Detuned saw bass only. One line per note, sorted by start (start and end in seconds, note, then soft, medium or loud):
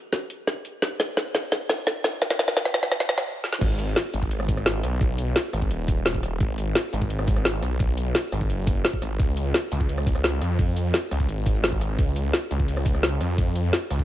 3.61 3.95 G#1 loud
4.14 4.30 G#1 loud
4.31 4.82 G#1 loud
4.83 5.34 B1 loud
5.53 5.69 G#1 loud
5.71 5.87 D#1 medium
5.88 6.39 D#1 loud
6.40 6.74 G#1 loud
6.93 7.09 G#1 loud
7.10 7.61 G#1 loud
7.63 8.13 B1 loud
8.32 8.48 G#1 loud
8.50 8.83 F#1 loud
9.02 9.18 G#1 loud
9.19 9.53 C#2 loud
9.72 9.88 C#2 medium
9.89 10.40 C#2 loud
10.42 10.92 F2 loud
11.11 11.27 C#2 loud
11.29 11.45 G#1 loud
11.46 11.97 G#1 loud
11.99 12.32 C#2 loud
12.51 12.67 C#2 loud
12.68 13.19 C#2 loud
13.21 13.72 F2 loud
13.90 14.04 C#2 loud